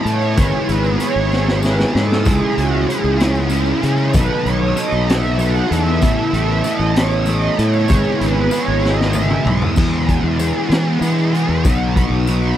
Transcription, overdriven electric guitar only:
Already playing: A3
0.04 B3 E4 A4
0.37 G#3 B3 E4 G#4
0.68 B3 E4 G#4
0.99 G#3 B3 E4 G#4
1.32 B3 E4 G#4
1.61 G#3 B3 E4 G#4
1.93 B3 E4 G#4
2.24 C#3 G#3 C#4 E4 G#4
2.56 C#4 E4 G#4
2.87 G#3 C#4 E4 G#4
3.18 C#4 E4 G#4
3.49 G#3 C#4 E4 G#4
3.81 C#4 E4 G#4
4.14 B2 D#3 F#3 B3 D#4 A4
4.45 F#3 B3 D#4 A4
4.76 F#3 B3 D#4 A4
5.07 F#3 B3 D#4 A4
5.38 F#3 B3 D#4 A4
5.70 F#3 B3 D#4 A4
6.02 A2 A3 B3 E4 A4
6.33 B3 E4 A4
6.64 A3 B3 E4 A4
6.94 B3 E4 A4
7.26 A3 B3 E4 A4
7.58 B3 E4 A4
7.88 G#3 B3 E4 G#4
8.20 B3 E4 G#4
8.50 G#3 B3 E4 G#4
8.81 B3 E4 G#4
9.13 G#3 B3 E4 G#4
9.45 B3 E4 G#4
9.75 E2 B2 E3 G#3 B3 G#4
10.07 E3 G#3 B3 G#4
10.38 E3 G#3 B3 G#4
10.69 E3 G#3 B3 G#4
11.00 E3 G#3 B3 G#4
11.33 E3 G#3 B3 G#4
11.64 B2 F#3 B3 D#4 F#4
11.95 B3 D#4 F#4
12.27 F#3 B3 D#4 F#4

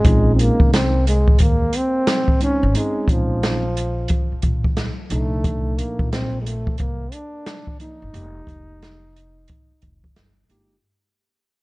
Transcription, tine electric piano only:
0.04 G#3 C4 C#4 D#4
2.40 G#3 C4 C#4 D#4
2.74 G#3 C4 C#4 D#4
5.10 A#2 F3 D4 D#4
7.79 F3 A#3 D4 D#4
8.13 G#3 A#3 D#4 G4
10.49 G#3 A#3 D#4 G4

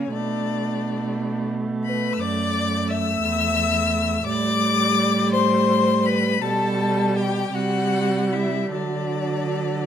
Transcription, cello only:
Already playing: C#3
0.13 B2
2.19 F#2
3.23 E2
4.25 A2
6.43 B2
7.53 C3
8.71 D3

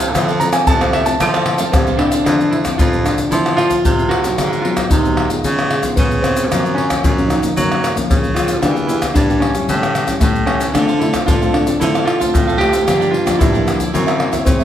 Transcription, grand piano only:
0.40 A#5
0.53 G#5
0.67 A5
0.81 C5
0.93 E5
1.06 A5
1.72 C4
1.97 D4
2.25 D4
2.50 E4
2.78 F4
3.04 D4
3.31 E4
3.57 F4
4.09 F#4
4.62 F4
4.90 D#4
5.96 B3
6.22 C4
6.75 C#4
7.27 D#4
8.34 F4
8.62 D4
8.87 E4
9.14 D4
9.40 C#4
10.20 A3
10.46 C#4
10.74 D4
10.99 E4
11.27 F4
11.53 D4
11.80 E4
12.05 F4
12.58 G4
13.11 F4
13.39 E4
14.45 C4

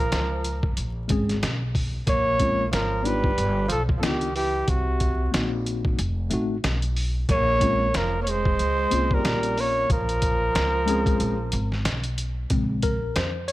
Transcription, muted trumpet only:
Already playing: A#4
2.09 C#5
2.74 A#4
3.06 B4
3.71 A4
3.99 A4
4.04 G4
4.36 G4
4.69 F#4
7.31 C#5
7.97 A#4
8.23 C#5
8.30 C5
9.14 A#4
9.61 C#5
9.93 A#4

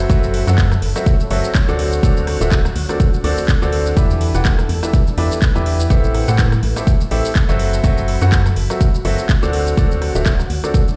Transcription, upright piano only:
0.10 F#3 C4 F#4 A4 E5
0.47 F#3 C4 F#4 A4 F#5
0.96 F#3 C4 F#4 A4 E5
1.31 F#3 C4 F#4 A4 E5
1.68 D3 C4 F#4 A4 D5
2.03 D3 C4 F#4 A4 D5
2.41 D3 C4 F#4 A4 E5
2.90 D3 C4 F#4 A4 D5
3.24 D3 C4 F#4 A4 D5
3.62 D3 C4 F#4 A4 D5
3.97 E3 D4 G4 B4 E5
4.35 E3 D4 G4 B4 F#5
4.83 E3 D4 G4 B4 E5
5.18 E3 D4 G4 B4 E5
5.55 E3 D4 G4 B4 E5
5.90 A2 C4 G4 A4 E5
6.28 A2 C4 G4 A4 F#5
6.76 A2 C4 G4 A4 E5
7.11 A2 C4 G4 A4 E5
7.49 F#3 C4 F#4 A4 E5
7.84 F#3 C4 F#4 A4 E5
8.22 F#3 C4 F#4 A4 F#5
8.70 F#3 C4 F#4 A4 E5
9.05 F#3 C4 F#4 A4 E5
9.43 D3 C4 F#4 A4 D5
9.78 D3 C4 F#4 A4 D5
10.15 D3 C4 F#4 A4 E5
10.64 D3 C4 F#4 A4 D5

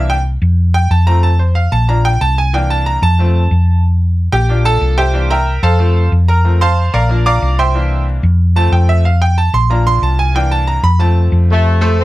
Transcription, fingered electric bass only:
Already playing: C2
0.42 F2
0.90 F2
1.72 A#1
2.21 C2
3.02 F2
3.51 F2
4.33 A#1
4.81 C2
5.63 F2
6.12 F2
6.94 A#1
7.42 C2
8.23 F2
8.72 F2
9.53 A#1
10.02 C2
10.83 F2
11.32 F2

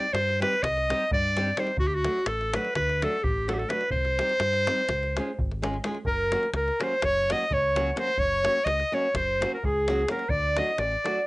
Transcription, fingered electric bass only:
0.13 G2
0.63 C2
1.11 G2
1.77 D2
2.26 A1
2.76 D2
3.24 A1
3.90 C2
4.40 G2
4.89 C#2
5.39 G#1
6.05 F#1
6.53 C#2
7.03 F#1
7.51 C#2
8.17 F#1
8.66 C#2
9.14 F#1
9.64 C#2
10.30 D2
10.78 A1

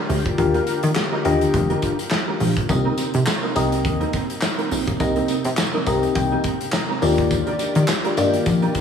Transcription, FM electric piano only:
0.38 D4 F4 G4 A#4 F5
1.12 A#4 D#5
1.25 D3 F4 G4 A#4 D#5
2.69 C4 D#4 G4 A#4 D#5
3.43 A#4 D#5
3.55 C4 D#4 G4 A#4 D#5
5.00 C4 D#4 G4 A#4 D#5
5.74 A#4 D#5
5.86 C4 D#4 G4 A#4 D#5
6.16 G5
6.73 A#5
7.02 A#3 D#4 F4 G4 D5
8.05 G4 D5
8.17 A#3 D#4 F4 G4 D5

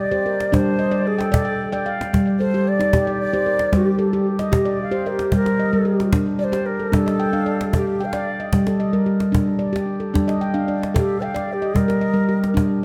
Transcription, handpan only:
0.11 G4 C5
0.26 A#4
0.52 G3 D4
0.79 D#5
0.91 D5
1.19 G5
1.32 D5
1.45 G5
1.72 D5 G5
1.86 F5
2.13 G3
2.41 A4
2.54 G4
2.79 D#4
2.94 G4
3.07 D5
3.33 G4 C5
3.46 A#4
3.73 G3
3.99 A4
4.13 G4
4.39 D#5
4.52 G4
4.65 D5
4.91 G4 C5
5.06 A#4
5.32 G3
5.46 A#4
5.59 D#5
5.73 G3 A#4
5.85 G4
6.13 D4
6.39 D5
6.52 G4
6.80 A4
6.92 G3 D4
7.06 D#5
7.20 G5
7.33 D4 F5
7.46 D5
7.73 A4
8.01 G5
8.13 D5
8.40 D#5
8.53 G3
8.67 A4
8.80 D#5
8.93 G3 A#4
9.06 G4
9.32 D4
9.59 D5
9.73 G4
10.00 A4
10.14 G3 D4
10.28 D#5
10.41 G5
10.54 D4 F5
10.68 D5
10.94 A4
11.22 G5
11.34 D5
11.62 D#5
11.75 G3
11.88 A#4
12.01 D#5
12.14 G3 A#4
12.29 G4
12.54 D4

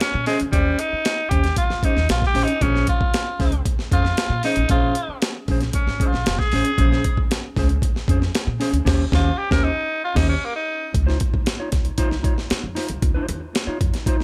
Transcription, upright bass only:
0.14 A#2
0.41 D2
0.53 D#2
0.93 muted upright bass stroke
1.31 D#2
1.70 C#2
1.97 D#2
2.09 A#1
2.34 A1
2.62 A#1
3.01 muted upright bass stroke
3.40 C#2
3.92 F2
4.30 A#2
4.57 A1
4.70 A#1
5.08 muted upright bass stroke
5.48 A#1
5.87 G#1
6.13 A#1
6.26 F1
6.53 A1
6.78 A#1
7.18 muted upright bass stroke
7.57 C#2
8.08 F2
8.47 A#2
8.73 D2
8.86 D#2
9.12 D#2
9.51 D#2
10.16 D#2
10.95 C#2
11.34 G#1
11.72 C#2
11.98 muted upright bass stroke
12.12 C2
12.51 muted upright bass stroke
12.64 F2
12.90 C2
13.02 C#2
13.29 D#2
13.67 muted upright bass stroke
13.81 F2

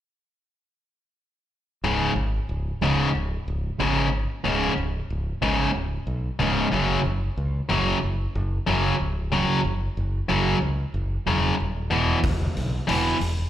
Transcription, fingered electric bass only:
1.84 C#1
2.16 G#1
2.49 C#1
2.81 C#1
3.15 C#1
3.48 C#1
3.80 G#1
4.45 C#1
4.78 C#1
5.10 C#1
5.43 G#1
5.75 C#1
6.07 B1
6.40 C#1
6.72 F#1
7.05 F#1
7.37 C#2
7.70 F#1
8.03 F#1
8.35 F#1
8.68 F#1
9.00 C#1
9.65 F#1
9.97 F#1
10.30 F#1
10.62 C#2
10.94 F#1
11.27 E1
11.60 D#1
11.92 E1
12.24 E1
12.57 B1
12.88 E1
13.21 E1

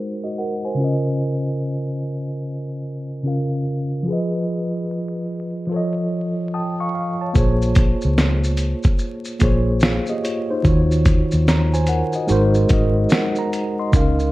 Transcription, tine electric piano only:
Already playing: G#3 D#4 F#4 A#4 C5
0.24 F#4 D#5
0.38 A#4 F#5
0.65 C5 G#5
0.75 C#3 C#4
0.79 F4 A#4
0.84 D#5
3.23 C#3 C#4 F4 A#4
3.28 F5
4.03 F3 F4
4.08 G#4 B4
4.13 D#5
5.66 F3 F4
5.71 A4 C#5
5.76 D#5
6.54 G5 A5 D#6
6.80 F5 C#6
6.94 F5
7.21 C#5 A5
7.33 A#3 F4 G#4 C5
7.38 C#5
9.39 A#3 F4 G#4 C5
9.44 C#5
9.83 G#4 F5
10.09 G4 D#5
10.24 F4 C#5
10.50 D#4 C5
10.63 D#3 D#4 F4 F#4
10.68 C#5
11.48 C#5 A#5
11.74 C5 G#5
11.89 A#4 F#5
12.15 F#4 D#5
12.27 G#3 D#4 F#4 A#4
12.32 C5
12.69 G#3 D#4 F#4 A#4
12.73 D#5
13.12 A#4 F#5
13.39 A#5
13.80 D#5 C6
13.92 C#3 C#4 D#4 A#4
13.97 F5

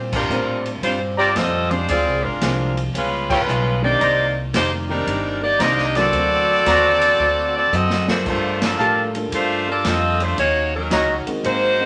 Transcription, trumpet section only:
1.18 G4 C5 D5 A#5
3.30 F4 B4 C#5 G5
4.01 D#4 C5 D5 A#5
5.60 D#4 C5 D5 A#5
6.66 F#4 C5 D5 A#5
8.79 G4 A#4 F5 A5
10.91 F#4 C#5 D#5 A#5

